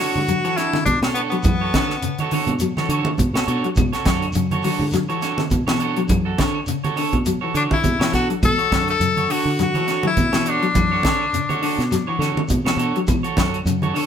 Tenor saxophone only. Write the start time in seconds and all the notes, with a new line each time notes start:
Already playing: F#4
0.57 E4
0.86 D4
1.14 B3
1.30 B3
7.57 D4
7.73 E4
8.15 F#4
8.45 A4
8.90 A4
9.31 F#4
9.62 F#4
10.07 E4
10.50 D4